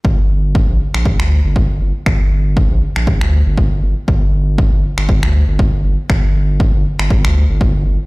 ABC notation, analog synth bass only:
X:1
M:4/4
L:1/16
Q:"Swing 16ths" 1/4=119
K:Gm
V:1 name="Analog synth bass" clef=bass
G,,,4- G,,, B,,, z B,,,2 D,,2 G,,,3 G,,, z | G,,,4- G,,, B,,, z B,,,2 D,,2 G,,,3 G,,, z | G,,,4- G,,, G,,, z G,,,2 D,,2 G,,,3 G,,, z | G,,,4- G,,, G,,, z G,,,2 D,,2 G,,,3 G,,, z |]